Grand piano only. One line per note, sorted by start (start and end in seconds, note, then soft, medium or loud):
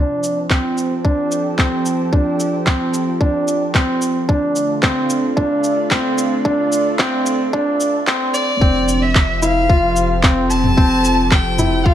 0.00 0.38 D4 medium
0.51 0.92 C4 medium
1.05 1.46 D4 medium
1.59 2.00 C4 medium
2.13 2.54 D4 medium
2.67 3.08 C4 medium
3.21 3.62 D4 medium
3.75 4.16 C4 medium
4.29 4.70 D4 medium
4.83 5.25 C4 medium
5.37 5.78 D4 medium
5.91 6.33 C4 medium
6.45 6.87 D4 medium
6.99 7.41 C4 medium
7.53 7.95 D4 loud
8.07 8.49 C4 medium
8.61 9.03 C4 medium
9.42 9.63 E4 medium
9.69 10.11 F4 medium
10.24 10.65 C4 medium
10.77 11.19 C4 medium
11.59 11.80 E4 medium
11.86 11.94 F4 medium